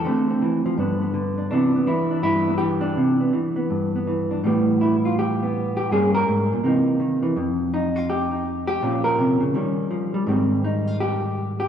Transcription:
Already playing: A4
0.05 D3 A3 C4
0.31 C4
0.42 E3
0.66 F3
0.78 G2 D3 B3 D4
1.02 B3
1.14 D3
1.38 D4
1.51 C3 E3 B3 D4
1.76 B3
1.87 E3 E4
2.11 D4
2.23 G2 E4
2.48 B3
2.58 E3 G4
2.81 D4
2.97 C3
3.21 B3
3.33 E3
3.56 B3
3.70 G2
3.96 B3
4.07 E3
4.31 D4
4.44 A2 E3 G3 B3 G4
4.81 E4
5.05 F4
5.19 G4
5.42 B3
5.77 G4
5.91 G2 G3 A#3 C#4 G#4
6.15 A#4
6.28 G#2
6.53 A#2
6.64 C3 E3 A#3 D#4
7.00 D#3
7.23 E3
7.36 F2
7.74 D#4
7.96 F4
8.10 G4
8.31 D#4
8.67 G4
8.82 A#2 F3 C#4 F4
9.04 A#4
9.19 C3
9.40 C#3
9.54 D#3 G3 C#4
9.91 F3
10.14 G3
10.27 G#2 D#3 G3 C4 G4
10.64 D#4
10.87 F4
11.00 G4
11.60 G4

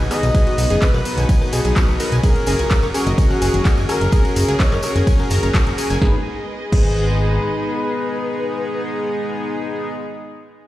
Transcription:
Already playing: F#3 B3 D#5
0.00 G#6, high conga
0.10 B3 D#4 F#4 G#4 B4 D#5 G#5, cross-stick, open hi-hat, tambourine, high woodblock
0.23 B1, closed hi-hat, tambourine
0.35 B3 D#4 F#4 G#4 B4 G#5, kick, closed hi-hat, ride
0.47 F#4 F#5, closed hi-hat, tambourine
0.58 B1, open hi-hat, tambourine
0.70 F#1 B3 D#4 F#4 G#4 B4 G#5, closed hi-hat, tambourine
0.82 B4 D#5 D#6, kick, clap, closed hi-hat, ride, tambourine
0.94 B1 B4 B5, tambourine, cowbell
1.05 B3 D#4 F#4 B4, open hi-hat, tambourine
1.17 B1 G#5 G#6, closed hi-hat, tambourine, high conga
1.29 G#5 G#6, kick, closed hi-hat, ride, tambourine
1.41 B3 D#4 F#4 B4, tambourine, cowbell, high conga, high woodblock
1.53 B1 G#4 G#5, open hi-hat, tambourine
1.65 B1 G#4 G#5, closed hi-hat, tambourine
1.76 B3 D#4 F#4 B4 D#5 D#6, kick, clap, closed hi-hat, ride, tambourine
1.88 B1, tambourine, high woodblock
2.00 B3 D#4 F#4 A#4 B4 A#5, open hi-hat, tambourine
2.12 B1 G#5 G#6, closed hi-hat, tambourine
2.23 C#4 F#4 G#4 A#4 G#5, kick, closed hi-hat, ride, tambourine
2.36 closed hi-hat, tambourine
2.46 F#1 G#4 G#5, open hi-hat, tambourine
2.59 C#2 C#4 F#4 G#4 A#4 G#5, closed hi-hat, tambourine
2.70 kick, clap, closed hi-hat, ride, tambourine
2.82 F#1 C#5 C#6, tambourine, cowbell
2.94 C#4 F#4 G#4 A#4 G#5, open hi-hat, tambourine
3.07 F#1 D#5 D#6, closed hi-hat, tambourine, high conga
3.18 kick, closed hi-hat, ride, tambourine
3.30 C#4 F#4 G#4 A#4 F#5, tambourine, high conga, high woodblock
3.42 F#1 G#4 G#5, open hi-hat, tambourine
3.53 F#1, closed hi-hat, tambourine, high conga
3.65 C#4 F#4 G#4 A#4 D#5 D#6, kick, clap, closed hi-hat, ride, tambourine
3.77 F#1 G#5 G#6, tambourine, high conga
3.89 C#4 F#4 G#4 A#4 G#5, cross-stick, open hi-hat, tambourine, high woodblock
4.01 F#1, closed hi-hat, tambourine
4.12 C#4 F#4 G#4 A#4 G#5, kick, closed hi-hat, ride, tambourine
4.25 F#4 F#5, closed hi-hat, tambourine
4.36 F#1, open hi-hat, tambourine
4.48 C#2 C#4 F#4 G#4 A#4 G#5, closed hi-hat, tambourine
4.60 C#5 D#5 D#6, kick, clap, closed hi-hat, ride, tambourine
4.72 F#1 A#4 A#5, clap, tambourine, cowbell
4.83 C#4 F#4 G#4 A#4, cross-stick, open hi-hat, tambourine
4.95 F#1 G#5 G#6, closed hi-hat, tambourine, high conga
5.07 G#5 G#6, kick, closed hi-hat, ride, tambourine
5.19 C#4 F#4 G#4 A#4, tambourine, cowbell, high conga, high woodblock
5.30 F#1 A#4 A#5, open hi-hat, tambourine
5.43 F#1 A#4 A#5, closed hi-hat, tambourine
5.54 C#4 F#4 G#4 A#4 F#5, kick, clap, closed hi-hat, ride, tambourine
5.66 F#1, closed hi-hat, tambourine, high woodblock
5.78 C#4 F#4 G#4 A#4 G#5, open hi-hat, tambourine
5.90 F#1 G#5 G#6, closed hi-hat, tambourine
6.02 G#1 G#3 B3 D#4 G#4 B4 D#5, kick, snare
6.72 G#1 G#3 B3 D#4 G#4 B4, kick, crash

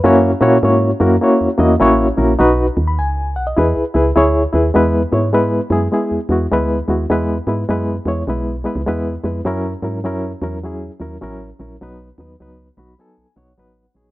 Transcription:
Already playing: B4
0.04 F#2 A#3 C#4 E4 F#4 C#5
0.41 A#2 A#3 C#4 E4 F#4 C#5
0.63 G#2 A#3 C#4 E4 F#4 C#5
1.00 F#2 A#3 C#4 E4 F#4 A#4
1.21 A#3 C#4 E4 F#4 C#5
1.41 E2
1.58 E2 A#3 C#4 E4 F#4 D#5
1.80 A1 A#3 C#4 E4 F#4 C#5
2.17 A#1 A#3 C#4 E4 F#4 A#4
2.39 B1 D#4 F#4 B4
2.77 D#2
2.87 B5
2.98 C#2 G#5
3.36 B1 F#5
3.47 D#5
3.56 E2 E4 G#4 B4
3.76 C#2
3.94 C#2 E4 G#4 B4
4.16 D2 E4 G#4 C#5
4.53 D#2 E4 G#4 B4
4.74 E2 G#3 B3 E4 B4
5.11 G#2 G#3 B3 E4 C#5
5.33 G#3 B3 E4 B4
5.70 F#2 G#3 B3 E4 G#4
5.92 G#3 B3 E4 G#4
6.11 E2
6.29 E2 G#3 B3 E4 F#4
6.52 D2 G#3 B3 E4 B4
6.88 D#2 G#3 B3 E4 F#4
7.10 E2 G#3 B3 E4 B4
7.47 G#2 G#3 B3 E4 B4
7.69 F#2 G#3 B3 E4 B4
8.05 E2 G#3 B3 E4 C#5
8.27 B1 G#3 B3 E4 B4
8.64 G#3 B3 E4 B4
8.76 C#2
8.86 E2 G#3 B3 E4 B4
9.24 F2 G#3 B3 E4 B4
9.45 F#2 F#3 C#4 E4 A#4
9.82 G#2 F#3 C#4 E4 A#4
10.04 F#2 F#3 C#4 E4 A#4
10.42 E2 F#3 C#4 E4 A#4
10.63 F#3 C#4 E4 G#4
11.00 D#2 F#3 C#4 E4 A#4
11.21 A1 F#3 C#4 E4 A#4
11.59 A#1 F#3 C#4 E4 A#4
11.81 B1 F#3 B3 D#4 B4
12.18 D#2 F#3 B3 D#4 B4
12.40 C#2 F#3 B3 D#4 B4
12.77 B1 F#3 B3 D#4 F#4 B5
12.99 F#3 B3 D#4 A4 G#5
13.18 B1
13.36 B1 F#3 B3 D#4 C#5 F#5
13.58 A1 F#3 B3 D#4 B4 F#5
13.95 A#1 F#3 B3 D#4 G#4 C#5

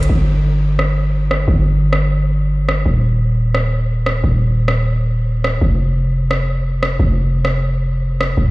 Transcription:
0.03 closed hi-hat
0.09 G1
0.79 cross-stick
1.31 cross-stick
1.48 G1
1.93 cross-stick
2.69 cross-stick
2.86 D#1
3.55 cross-stick
4.06 cross-stick
4.24 D#1
4.68 cross-stick
5.44 cross-stick
5.61 F1
6.31 cross-stick
6.83 cross-stick
7.00 F1
7.45 cross-stick
8.21 cross-stick
8.37 D1

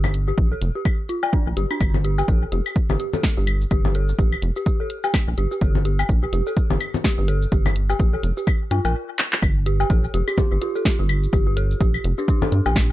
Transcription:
Already playing: G1
0.04 low conga, claves
0.14 closed hi-hat
0.28 G4
0.38 A#1, kick, closed hi-hat
0.52 A4
0.62 F1, closed hi-hat
0.75 G4
0.85 kick, claves
1.09 F4, closed hi-hat
1.23 D5, low woodblock
1.33 D4, kick
1.47 A#1
1.57 G1 G4, closed hi-hat
1.71 D4, claves
1.81 G1, kick, cabasa, claves
1.94 low conga
2.04 G4, closed hi-hat
2.18 G4, cabasa, low woodblock
2.28 A#1 A4, kick, cabasa
2.52 F1 G4, closed hi-hat
2.66 cabasa, claves
2.76 kick, cabasa
2.90 G1 G4, low conga
3.00 G4, closed hi-hat
3.13 A4, low conga, cabasa
3.23 kick, snare, cabasa
3.37 G1 G4
3.47 closed hi-hat, claves
3.61 cabasa
3.71 G1 G4, kick, cabasa
3.85 G4, low conga
3.95 A4, closed hi-hat
4.09 cabasa
4.19 A#1 G4, kick, cabasa
4.32 claves
4.42 F1, closed hi-hat
4.56 G4, cabasa
4.66 G4, kick, cabasa
4.80 A4
4.90 closed hi-hat
5.04 G4, cabasa, low woodblock
5.14 kick, snare, cabasa, claves
5.28 A#1
5.38 G1 G4, closed hi-hat
5.51 G4, cabasa
5.61 G1 A4, kick, cabasa
5.75 low conga
5.85 G4, closed hi-hat
5.99 cabasa, claves, low woodblock
6.09 A#1, kick, cabasa
6.23 G4
6.33 F1 G4, closed hi-hat
6.47 A4, cabasa
6.57 kick, cabasa
6.70 G1 G4, low conga
6.80 closed hi-hat, claves
6.94 low conga, cabasa
7.04 G4, kick, snare, cabasa
7.18 G1 G4
7.28 A4, closed hi-hat
7.42 cabasa
7.52 G1 G4, kick, cabasa
7.66 low conga, claves
7.76 closed hi-hat
7.90 G4, cabasa, low woodblock
8.00 A#1 G4, kick, closed hi-hat, cabasa
8.13 A4
8.23 F1, closed hi-hat
8.37 G4, cabasa
8.47 kick, cabasa, claves
8.71 G2 F4, closed hi-hat, low woodblock
8.85 A#1 A#4, closed hi-hat, cabasa, low woodblock
9.19 clap
9.33 clap
9.42 G1, kick, cabasa, claves
9.66 G4, closed hi-hat
9.80 G4, cabasa, low woodblock
9.90 A#1 A4, kick, cabasa
10.04 cabasa
10.14 F1 G4, closed hi-hat
10.28 G4, cabasa, claves
10.38 G4, kick, low conga, cabasa
10.52 G1 G4
10.61 F4 G4, closed hi-hat
10.75 A4, cabasa
10.85 kick, snare, cabasa
10.99 G1 G4
11.09 closed hi-hat, claves
11.23 cabasa
11.33 G1 G4, kick, cabasa
11.47 G4
11.57 A4, closed hi-hat
11.71 cabasa
11.81 A#1 G4, kick, cabasa
11.94 cabasa, claves
12.04 F1, closed hi-hat
12.18 D4 G4, cabasa
12.28 D4 G4, kick, cabasa
12.42 A4, low conga
12.52 G2, closed hi-hat
12.66 A#1 G4, cabasa, low woodblock
12.76 kick, snare, cabasa, claves

